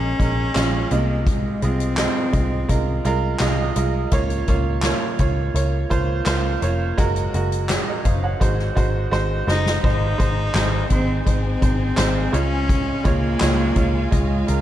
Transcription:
Already playing: picked electric bass A#1, upright piano A#2 G#3 C#4 A#4, cello C#4
0.19 picked electric bass A#1, upright piano G#3 C#4 A#4, kick, closed hi-hat
0.54 picked electric bass A#1, upright piano G#3 C#4 F4, snare, clap, closed hi-hat
0.91 picked electric bass C2, upright piano C3 G#3 F4 D#5, cello A#3, closed hi-hat
1.27 cello G#3, kick, closed hi-hat
1.62 picked electric bass C2, upright piano G#3 F4 D#5, cello C4, closed hi-hat
1.80 closed hi-hat
1.97 upright piano G#3 F4 D#5, snare, clap, closed hi-hat
2.32 picked electric bass C2, upright piano G#3 F4 D#5, kick, closed hi-hat
2.69 picked electric bass C2, upright piano G#3 F4 A#4, kick, closed hi-hat
3.05 picked electric bass C2, upright piano G#3 F4 A#4, closed hi-hat
3.39 picked electric bass C2, upright piano G#3 F4 D#5, snare, clap, closed hi-hat
3.76 picked electric bass C2, upright piano G#3 F4 D#5, closed hi-hat
4.11 picked electric bass C#2, upright piano C#3 A#3 F4 C#5, kick, closed hi-hat
4.30 closed hi-hat
4.47 picked electric bass C#2, upright piano A#3 F4 C#5, kick, closed hi-hat
4.82 upright piano A#3 F4 C#5, snare, clap, closed hi-hat
5.19 picked electric bass C#2, upright piano A#3 F4 C#5, kick, closed hi-hat
5.54 picked electric bass C#2, upright piano A#3 F4 C#5, closed hi-hat
5.90 picked electric bass C#2, upright piano A#3 F4 C5, kick, closed hi-hat
6.26 picked electric bass C#2, upright piano A#3 F4 C5, snare, clap, closed hi-hat
6.61 picked electric bass F1, upright piano A#3 F4 C#5, closed hi-hat
6.98 picked electric bass F#1, upright piano G#3 F#4 A#4, kick, closed hi-hat
7.16 closed hi-hat
7.34 picked electric bass F#1, upright piano G#3 F#4 A#4, closed hi-hat
7.52 closed hi-hat
7.69 upright piano G#4 C#5, snare, clap, closed hi-hat
7.87 upright piano A#4 D#5
8.05 picked electric bass F#1, upright piano C5 F5, kick, closed hi-hat
8.24 upright piano C#5 F#5
8.40 picked electric bass G#1, upright piano G#2 G#3 F#4 C5, kick, closed hi-hat
8.59 snare
8.75 picked electric bass G#1, upright piano G#3 F#4 C5, kick, closed hi-hat
9.11 picked electric bass G#1, upright piano G#3 F#4 C5, snare
9.47 picked electric bass F#1, upright piano G#3 F#4 C5, cello D#4, snare
9.66 snare
9.83 picked electric bass G#1, upright piano G#2 G#3 D#4 C5, string section D#4 G#4 C5 G#5, cello D#4, kick, crash
10.18 picked electric bass G#1, upright piano G#3 D#4 C5, kick, closed hi-hat
10.54 picked electric bass G#1, upright piano G#3 D#4 C5, snare, clap, closed hi-hat
10.90 picked electric bass G#1, upright piano G#3 D#4 C5, cello C4, kick, closed hi-hat
11.25 picked electric bass G#1, upright piano G#3 D#4 C5, cello C4, kick, closed hi-hat
11.61 picked electric bass G#1, upright piano G#3 D#4 C5, kick, closed hi-hat
11.96 picked electric bass G#1, upright piano G#3 D#4 C5, snare, clap, closed hi-hat
12.32 picked electric bass C#2, upright piano C#3 G#3 F4 C#5, cello C#4, string section F4 F5, closed hi-hat
12.69 kick, closed hi-hat
13.04 picked electric bass C#2, upright piano G#3 F4 C#5, cello A#3, kick, closed hi-hat
13.40 picked electric bass C#2, upright piano G#3 F4 C#5, snare, clap, closed hi-hat
13.75 picked electric bass C#2, upright piano G#3 F4 C#5, kick, closed hi-hat
14.11 picked electric bass C#2, upright piano G#3 F4 D#5, cello G#3, kick, closed hi-hat
14.47 picked electric bass C#2, upright piano G#3 F4 A#4, closed hi-hat

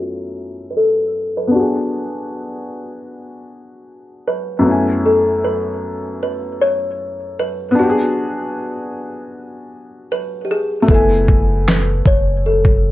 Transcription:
Already playing: felt piano F#2 A3 B3 C#4 E4 G#5
0.00 kalimba F#4
0.70 kalimba B4
0.77 kalimba A4
1.37 kalimba B4
1.47 felt piano B3 D4
1.55 felt piano F#4
1.60 felt piano G#4
4.28 kalimba B4
4.59 felt piano F#2 A3
4.64 felt piano B3 C#4
4.69 felt piano E4 G#5
5.06 kalimba A4
5.44 kalimba B4
6.23 kalimba B4
6.61 kalimba C#5
7.39 kalimba B4
7.71 felt piano B3 D4
7.79 kalimba F#4, felt piano F#4
7.83 felt piano G4
7.90 felt piano G#4
10.12 kalimba B4
10.45 kalimba G4
10.51 kalimba G#4
10.82 felt piano A3
10.86 sub bass F#1, felt piano B3 E4, kalimba A4, kick
10.94 felt piano G#5
11.28 kick
11.68 kalimba B4, snare, clap
12.06 sub bass F#1, kalimba C#5, kick
12.46 kalimba A4
12.65 kick

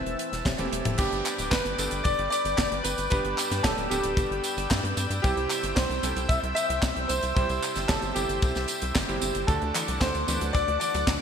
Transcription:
Already playing: electric grand piano E3 A3 C4 E4 B4, analog synth pad C4 E5 A5 E6, grand piano E4
0.06 analog synth bass E1, closed hi-hat
0.19 closed hi-hat
0.33 analog synth bass E1, snare, closed hi-hat
0.45 analog synth bass E1, kick, snare, clap, closed hi-hat, high tom
0.58 analog synth bass E1, electric grand piano E3 A3 C4 E4 G4, closed hi-hat, high tom
0.72 analog synth bass E1, closed hi-hat
0.85 analog synth bass E1, closed hi-hat, mid tom
0.98 analog synth bass G1, electric grand piano G2 G3 B3 D4 G4, grand piano G4, analog synth pad B4 D5 G5 D6, kick, closed hi-hat, crash, tambourine
1.12 analog synth bass G1, closed hi-hat
1.25 clap, closed hi-hat, tambourine
1.38 analog synth bass D1, closed hi-hat, tambourine
1.51 analog synth bass G1, grand piano B4, kick, snare, clap, closed hi-hat, tambourine
1.65 analog synth bass G1, closed hi-hat, tambourine
1.78 analog synth bass G1, electric grand piano G2 G3 B3 D4 A4, closed hi-hat, tambourine
1.91 analog synth bass G1, closed hi-hat, tambourine
2.04 analog synth bass G1, grand piano D5, kick, closed hi-hat, tambourine
2.19 analog synth bass G1, closed hi-hat
2.30 grand piano D5, closed hi-hat, tambourine
2.45 analog synth bass G1, closed hi-hat, tambourine
2.58 analog synth bass G1, kick, snare, clap, closed hi-hat, tambourine
2.71 analog synth bass G1, closed hi-hat
2.83 analog synth bass G1, grand piano B4, closed hi-hat, tambourine
2.98 analog synth bass G1, closed hi-hat, tambourine
3.10 analog synth bass G1, electric grand piano G2 G3 B3 D4 G4, grand piano B4, analog synth pad E6, kick, closed hi-hat, tambourine
3.25 analog synth bass G1, closed hi-hat
3.38 clap, closed hi-hat, tambourine
3.51 analog synth bass G2, snare, closed hi-hat, tambourine
3.63 analog synth bass D1, grand piano A4, kick, snare, clap, closed hi-hat, tambourine
3.78 analog synth bass D1, closed hi-hat, tambourine
3.89 analog synth bass D1, electric grand piano G2 G3 B3 D4 A4, grand piano G4, closed hi-hat, tambourine
4.03 analog synth bass D1, closed hi-hat, tambourine
4.17 analog synth bass G1, kick, closed hi-hat, tambourine
4.31 analog synth bass G1, closed hi-hat
4.44 closed hi-hat, tambourine
4.57 analog synth bass G1, closed hi-hat, tambourine
4.70 analog synth bass G2, kick, snare, clap, closed hi-hat, tambourine
4.84 analog synth bass G2, closed hi-hat
4.97 analog synth bass G2, closed hi-hat, tambourine
5.10 analog synth bass G2, closed hi-hat, tambourine
5.22 analog synth bass C2, electric grand piano C3 G3 C4 E4 G4, grand piano G4, analog synth pad C5 E5, kick, closed hi-hat, tambourine
5.37 analog synth bass C2, closed hi-hat
5.50 clap, closed hi-hat, tambourine
5.63 analog synth bass G1, closed hi-hat, tambourine
5.75 analog synth bass C2, grand piano C5, kick, snare, clap, closed hi-hat, tambourine
5.89 analog synth bass C2, closed hi-hat, tambourine
6.03 analog synth bass C2, electric grand piano C3 G3 C4 E4 A4, closed hi-hat, tambourine
6.16 analog synth bass C2, closed hi-hat, tambourine
6.29 analog synth bass C2, grand piano E5, kick, closed hi-hat, tambourine
6.43 analog synth bass C2, closed hi-hat
6.55 grand piano E5, closed hi-hat, tambourine
6.70 analog synth bass C2, closed hi-hat, tambourine
6.82 analog synth bass C2, kick, snare, clap, closed hi-hat, tambourine
6.96 analog synth bass C2, closed hi-hat
7.08 analog synth bass C2, grand piano C5, closed hi-hat, tambourine
7.23 analog synth bass C2, closed hi-hat, tambourine
7.35 analog synth bass C2, electric grand piano C3 G3 C4 E4 G4, grand piano C5, kick, closed hi-hat, tambourine
7.49 analog synth bass C2, closed hi-hat, tambourine
7.62 clap, closed hi-hat, tambourine
7.75 analog synth bass G1, snare, closed hi-hat, tambourine
7.88 analog synth bass G1, grand piano A4, kick, snare, clap, closed hi-hat, tambourine
8.02 analog synth bass G1, closed hi-hat, tambourine
8.14 analog synth bass G1, electric grand piano C3 G3 C4 E4 A4, grand piano G4, closed hi-hat, tambourine
8.29 analog synth bass G1, closed hi-hat, tambourine
8.42 analog synth bass C2, kick, closed hi-hat, tambourine
8.55 analog synth bass C2, snare, closed hi-hat, tambourine
8.68 closed hi-hat, tambourine
8.82 analog synth bass C2, closed hi-hat, tambourine
8.95 analog synth bass G1, kick, snare, clap, closed hi-hat, tambourine
9.09 analog synth bass G1, electric grand piano C3 G3 C4 E4 G4, closed hi-hat, tambourine
9.21 analog synth bass G1, closed hi-hat, tambourine
9.35 analog synth bass G1, closed hi-hat, tambourine
9.47 analog synth bass D2, synth arpeggio sound D3, electric grand piano D3 A3 D4 F#4 A4, grand piano A4, analog synth pad A4 D5 F#5 D6, kick, closed hi-hat, tambourine
9.62 analog synth bass D2, closed hi-hat
9.75 synth arpeggio sound E3, clap, closed hi-hat, tambourine
9.88 analog synth bass C2, synth arpeggio sound F#3, closed hi-hat, tambourine
10.00 analog synth bass D2, synth arpeggio sound D3, grand piano C5, kick, snare, clap, closed hi-hat, tambourine
10.14 analog synth bass D2, closed hi-hat, tambourine
10.28 analog synth bass D2, electric grand piano D3 A3 D4 F#4 B4, synth arpeggio sound E3, closed hi-hat, tambourine
10.41 analog synth bass D2, synth arpeggio sound F#3, closed hi-hat, tambourine
10.53 analog synth bass D2, synth arpeggio sound D3, grand piano D5, kick, closed hi-hat, tambourine
10.68 analog synth bass D2, closed hi-hat
10.80 synth arpeggio sound E3, grand piano D5, closed hi-hat, tambourine
10.94 analog synth bass D2, synth arpeggio sound F#3, closed hi-hat, tambourine
11.07 analog synth bass D2, synth arpeggio sound D3, kick, snare, clap, closed hi-hat, tambourine

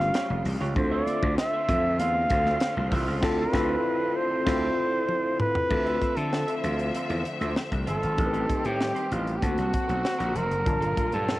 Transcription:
Already playing: string section C#3 G3 A3 F4, tine electric piano C#4 F4 G4, flugelhorn F5
0.14 clean electric guitar F4 G4 C#5, snare, closed hi-hat
0.30 slap bass F1, muted clean electric guitar stroke, high conga
0.45 slap bass C2, muted clean electric guitar stroke, open hi-hat, low conga
0.61 slap bass C#2, clean electric guitar F4 G4 C#5
0.74 slap bass D2, string section D3 C4, tine electric piano C4 D4 F4 A4, flugelhorn C5, muted clean electric guitar stroke, kick, closed hi-hat, muted conga, low conga
0.91 clean electric guitar F4 C5 E5, flugelhorn D5
1.06 clean electric guitar F4 C5 E5, closed hi-hat, high conga
1.22 slap bass D2, muted clean electric guitar stroke, kick
1.38 flugelhorn E5, muted clean electric guitar stroke, snare, closed hi-hat, muted conga
1.53 clean electric guitar F4 C5 E5
1.69 slap bass F2, clean electric guitar F4 C5 E5, kick, closed hi-hat, low conga
1.84 muted clean electric guitar stroke
1.99 slap bass E2, clean electric guitar F4 C5 E5, flugelhorn F5, closed hi-hat, muted conga, high conga
2.15 muted clean electric guitar stroke
2.30 slap bass D2, muted clean electric guitar stroke, kick, closed hi-hat
2.46 clean electric guitar F4 C5 E5, snare, high conga
2.61 muted clean electric guitar stroke, snare, closed hi-hat
2.76 slap bass C2, muted clean electric guitar stroke, muted conga, high conga
2.91 slap bass C2, clean electric guitar F4 C5 E5, kick, open hi-hat, low conga
3.07 slap bass C#2, clean electric guitar F4 C5 F5
3.21 slap bass D2, tine electric piano C4 E4 F4 A4, clean electric guitar F4 C5 F5, flugelhorn A4, kick, snare, crash
3.39 flugelhorn B4
3.52 slap bass D2, tine electric piano C4 E4 F4 A4, clean electric guitar F4 C5 E5, kick, snare
4.16 flugelhorn C5
4.45 slap bass D2, tine electric piano C4 E4 F4 A4, clean electric guitar F4 C5 E5, kick, snare, crash
5.09 high tom
5.40 flugelhorn B4, mid tom
5.55 floor tom
5.69 slap bass D2, string section D3 F3 A3 C4 E5, tine electric piano C4 F4 A4 E5, muted clean electric guitar stroke, kick, crash, muted conga, low conga
5.85 clean electric guitar F4 C5 E5, closed hi-hat, muted conga
6.01 clean electric guitar F4 C5 E5, kick, closed hi-hat, high conga
6.17 slap bass D3, flugelhorn A4, muted clean electric guitar stroke, closed hi-hat
6.32 muted clean electric guitar stroke, snare, muted conga
6.47 clean electric guitar F4 C5 E5, closed hi-hat
6.58 flugelhorn E4
6.63 slap bass D2, clean electric guitar F4 C5 E5, flugelhorn F4, closed hi-hat, low conga
6.79 muted clean electric guitar stroke, closed hi-hat
6.94 clean electric guitar F4 C5 E5, closed hi-hat, high conga
7.09 slap bass E2, muted clean electric guitar stroke, closed hi-hat, muted conga
7.25 muted clean electric guitar stroke, closed hi-hat
7.41 slap bass D2, clean electric guitar F4 C5 E5, closed hi-hat, high conga
7.56 muted clean electric guitar stroke, snare
7.71 slap bass C2, muted clean electric guitar stroke, kick, closed hi-hat, high conga
7.86 slap bass G1, clean electric guitar F4 C5 E5, flugelhorn A4, closed hi-hat, low conga
8.02 slap bass G#1, clean electric guitar F4 C5 F5, closed hi-hat
8.17 slap bass A1, string section D#3 G3 G4, tine electric piano C4 D#4 G4 A#4, muted clean electric guitar stroke, kick, closed hi-hat, muted conga, low conga
8.26 tine electric piano B4
8.33 clean electric guitar D#4 G4 C5, closed hi-hat
8.48 clean electric guitar D#4 G4 C5, kick, closed hi-hat, high conga
8.64 slap bass A2, flugelhorn G4, muted clean electric guitar stroke, closed hi-hat
8.79 muted clean electric guitar stroke, snare
8.95 clean electric guitar D#4 G4 C5, closed hi-hat, muted conga
9.10 slap bass A1, clean electric guitar D#4 G4 C5, flugelhorn F4, closed hi-hat, low conga
9.26 muted clean electric guitar stroke, closed hi-hat
9.36 flugelhorn G4
9.41 slap bass D2, string section A#2 D3 F#3 C4 F#4, tine electric piano A#3 C4 F4 A5, flugelhorn F#4, muted clean electric guitar stroke, kick, closed hi-hat, muted conga, high conga
9.49 tine electric piano F#4
9.57 slap bass C2, muted clean electric guitar stroke, closed hi-hat, muted conga
9.73 kick, closed hi-hat
9.88 slap bass B1, muted clean electric guitar stroke, closed hi-hat, high conga
10.03 muted clean electric guitar stroke, snare
10.19 slap bass A#1, clean electric guitar C4 F#4 A#4, closed hi-hat, muted conga, high conga
10.35 slap bass F1, clean electric guitar C4 F#4 C5, flugelhorn A#4, closed hi-hat, low conga
10.50 slap bass F#1, muted clean electric guitar stroke, closed hi-hat
10.65 slap bass G1, tine electric piano A#2 D4 F4 A5, string section G3 F4, muted clean electric guitar stroke, kick, closed hi-hat, low conga
10.81 clean electric guitar A#3 F4 A4, closed hi-hat, muted conga
10.96 clean electric guitar A#3 F4 A4, kick, closed hi-hat, high conga
11.12 slap bass G2, flugelhorn A4, muted clean electric guitar stroke, closed hi-hat
11.27 muted clean electric guitar stroke, snare, muted conga

